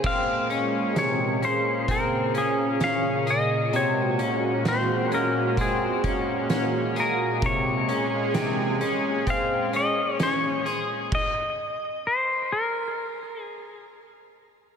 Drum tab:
CC |x-------|--------|--------|x-------|
HH |-xxxxxxx|xxxxxxxx|xxxxxxxx|--------|
SD |--o---o-|--o---o-|--o---o-|--------|
BD |o---o---|----oo--|o---o---|o-------|